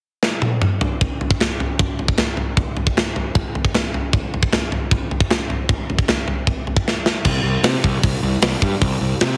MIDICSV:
0, 0, Header, 1, 3, 480
1, 0, Start_track
1, 0, Tempo, 390117
1, 1241, Time_signature, 4, 2, 24, 8
1, 11531, End_track
2, 0, Start_track
2, 0, Title_t, "Picked electric bass"
2, 0, Program_c, 0, 34
2, 8925, Note_on_c, 0, 36, 90
2, 9075, Note_off_c, 0, 36, 0
2, 9142, Note_on_c, 0, 36, 84
2, 9299, Note_off_c, 0, 36, 0
2, 9391, Note_on_c, 0, 48, 85
2, 9545, Note_off_c, 0, 48, 0
2, 9651, Note_on_c, 0, 36, 86
2, 9799, Note_off_c, 0, 36, 0
2, 9885, Note_on_c, 0, 36, 77
2, 10035, Note_off_c, 0, 36, 0
2, 10122, Note_on_c, 0, 36, 83
2, 10272, Note_off_c, 0, 36, 0
2, 10358, Note_on_c, 0, 36, 81
2, 10510, Note_off_c, 0, 36, 0
2, 10603, Note_on_c, 0, 43, 78
2, 10753, Note_off_c, 0, 43, 0
2, 10853, Note_on_c, 0, 36, 93
2, 11001, Note_off_c, 0, 36, 0
2, 11086, Note_on_c, 0, 36, 83
2, 11235, Note_off_c, 0, 36, 0
2, 11342, Note_on_c, 0, 48, 87
2, 11486, Note_off_c, 0, 48, 0
2, 11531, End_track
3, 0, Start_track
3, 0, Title_t, "Drums"
3, 279, Note_on_c, 9, 38, 62
3, 402, Note_off_c, 9, 38, 0
3, 514, Note_on_c, 9, 48, 67
3, 637, Note_off_c, 9, 48, 0
3, 757, Note_on_c, 9, 47, 80
3, 880, Note_off_c, 9, 47, 0
3, 998, Note_on_c, 9, 43, 89
3, 1121, Note_off_c, 9, 43, 0
3, 1243, Note_on_c, 9, 43, 78
3, 1244, Note_on_c, 9, 36, 97
3, 1366, Note_off_c, 9, 43, 0
3, 1367, Note_off_c, 9, 36, 0
3, 1488, Note_on_c, 9, 43, 58
3, 1606, Note_on_c, 9, 36, 77
3, 1611, Note_off_c, 9, 43, 0
3, 1728, Note_on_c, 9, 43, 73
3, 1729, Note_off_c, 9, 36, 0
3, 1736, Note_on_c, 9, 38, 97
3, 1852, Note_off_c, 9, 43, 0
3, 1859, Note_off_c, 9, 38, 0
3, 1972, Note_on_c, 9, 43, 62
3, 2095, Note_off_c, 9, 43, 0
3, 2207, Note_on_c, 9, 36, 102
3, 2213, Note_on_c, 9, 43, 79
3, 2330, Note_off_c, 9, 36, 0
3, 2336, Note_off_c, 9, 43, 0
3, 2449, Note_on_c, 9, 43, 56
3, 2564, Note_on_c, 9, 36, 74
3, 2572, Note_off_c, 9, 43, 0
3, 2678, Note_on_c, 9, 43, 77
3, 2685, Note_on_c, 9, 38, 109
3, 2687, Note_off_c, 9, 36, 0
3, 2801, Note_off_c, 9, 43, 0
3, 2808, Note_off_c, 9, 38, 0
3, 2917, Note_on_c, 9, 43, 59
3, 3040, Note_off_c, 9, 43, 0
3, 3162, Note_on_c, 9, 43, 80
3, 3163, Note_on_c, 9, 36, 97
3, 3285, Note_off_c, 9, 43, 0
3, 3286, Note_off_c, 9, 36, 0
3, 3403, Note_on_c, 9, 43, 60
3, 3526, Note_off_c, 9, 43, 0
3, 3527, Note_on_c, 9, 36, 77
3, 3650, Note_off_c, 9, 36, 0
3, 3656, Note_on_c, 9, 43, 70
3, 3664, Note_on_c, 9, 38, 91
3, 3779, Note_off_c, 9, 43, 0
3, 3787, Note_off_c, 9, 38, 0
3, 3889, Note_on_c, 9, 43, 58
3, 4012, Note_off_c, 9, 43, 0
3, 4123, Note_on_c, 9, 43, 69
3, 4125, Note_on_c, 9, 36, 102
3, 4246, Note_off_c, 9, 43, 0
3, 4248, Note_off_c, 9, 36, 0
3, 4371, Note_on_c, 9, 43, 53
3, 4486, Note_on_c, 9, 36, 75
3, 4494, Note_off_c, 9, 43, 0
3, 4607, Note_on_c, 9, 43, 77
3, 4609, Note_off_c, 9, 36, 0
3, 4615, Note_on_c, 9, 38, 103
3, 4731, Note_off_c, 9, 43, 0
3, 4738, Note_off_c, 9, 38, 0
3, 4852, Note_on_c, 9, 43, 56
3, 4975, Note_off_c, 9, 43, 0
3, 5085, Note_on_c, 9, 36, 103
3, 5086, Note_on_c, 9, 43, 77
3, 5208, Note_off_c, 9, 36, 0
3, 5209, Note_off_c, 9, 43, 0
3, 5337, Note_on_c, 9, 43, 59
3, 5446, Note_on_c, 9, 36, 79
3, 5460, Note_off_c, 9, 43, 0
3, 5568, Note_on_c, 9, 43, 78
3, 5569, Note_off_c, 9, 36, 0
3, 5576, Note_on_c, 9, 38, 98
3, 5691, Note_off_c, 9, 43, 0
3, 5699, Note_off_c, 9, 38, 0
3, 5809, Note_on_c, 9, 43, 62
3, 5932, Note_off_c, 9, 43, 0
3, 6045, Note_on_c, 9, 36, 103
3, 6046, Note_on_c, 9, 43, 86
3, 6168, Note_off_c, 9, 36, 0
3, 6169, Note_off_c, 9, 43, 0
3, 6291, Note_on_c, 9, 43, 57
3, 6404, Note_on_c, 9, 36, 79
3, 6414, Note_off_c, 9, 43, 0
3, 6527, Note_off_c, 9, 36, 0
3, 6527, Note_on_c, 9, 43, 88
3, 6535, Note_on_c, 9, 38, 104
3, 6650, Note_off_c, 9, 43, 0
3, 6658, Note_off_c, 9, 38, 0
3, 6767, Note_on_c, 9, 43, 58
3, 6890, Note_off_c, 9, 43, 0
3, 7003, Note_on_c, 9, 36, 100
3, 7004, Note_on_c, 9, 43, 78
3, 7126, Note_off_c, 9, 36, 0
3, 7127, Note_off_c, 9, 43, 0
3, 7256, Note_on_c, 9, 43, 60
3, 7364, Note_on_c, 9, 36, 81
3, 7379, Note_off_c, 9, 43, 0
3, 7484, Note_on_c, 9, 43, 72
3, 7487, Note_off_c, 9, 36, 0
3, 7491, Note_on_c, 9, 38, 94
3, 7607, Note_off_c, 9, 43, 0
3, 7614, Note_off_c, 9, 38, 0
3, 7723, Note_on_c, 9, 43, 58
3, 7846, Note_off_c, 9, 43, 0
3, 7962, Note_on_c, 9, 36, 107
3, 7963, Note_on_c, 9, 43, 77
3, 8085, Note_off_c, 9, 36, 0
3, 8086, Note_off_c, 9, 43, 0
3, 8209, Note_on_c, 9, 43, 54
3, 8324, Note_on_c, 9, 36, 80
3, 8332, Note_off_c, 9, 43, 0
3, 8447, Note_off_c, 9, 36, 0
3, 8462, Note_on_c, 9, 38, 60
3, 8585, Note_off_c, 9, 38, 0
3, 8686, Note_on_c, 9, 38, 81
3, 8809, Note_off_c, 9, 38, 0
3, 8916, Note_on_c, 9, 49, 98
3, 8922, Note_on_c, 9, 36, 97
3, 9039, Note_off_c, 9, 49, 0
3, 9045, Note_off_c, 9, 36, 0
3, 9395, Note_on_c, 9, 46, 50
3, 9403, Note_on_c, 9, 38, 104
3, 9518, Note_off_c, 9, 46, 0
3, 9526, Note_off_c, 9, 38, 0
3, 9647, Note_on_c, 9, 36, 86
3, 9770, Note_off_c, 9, 36, 0
3, 9886, Note_on_c, 9, 36, 103
3, 9886, Note_on_c, 9, 46, 54
3, 10009, Note_off_c, 9, 36, 0
3, 10009, Note_off_c, 9, 46, 0
3, 10359, Note_on_c, 9, 46, 58
3, 10366, Note_on_c, 9, 38, 108
3, 10482, Note_off_c, 9, 46, 0
3, 10489, Note_off_c, 9, 38, 0
3, 10607, Note_on_c, 9, 36, 76
3, 10730, Note_off_c, 9, 36, 0
3, 10846, Note_on_c, 9, 46, 55
3, 10847, Note_on_c, 9, 36, 101
3, 10970, Note_off_c, 9, 36, 0
3, 10970, Note_off_c, 9, 46, 0
3, 11327, Note_on_c, 9, 46, 52
3, 11334, Note_on_c, 9, 38, 99
3, 11450, Note_off_c, 9, 46, 0
3, 11457, Note_off_c, 9, 38, 0
3, 11531, End_track
0, 0, End_of_file